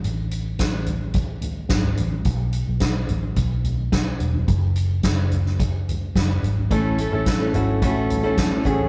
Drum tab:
HH |x-x-x-x-x-x-x-x-|x-x-x-x-x-x-x-x-|x-x-x-x-x-x-x-x-|x-x-x-x-x-x-x-x-|
SD |----o-------o---|----o-------o---|----o--o----o---|----o-------o---|
FT |------o---o--o-o|------o---o----o|------o---o----o|------o---o----o|
BD |----o---o---o---|o---o---o---o---|o---o---o---o---|o---o---o---o-o-|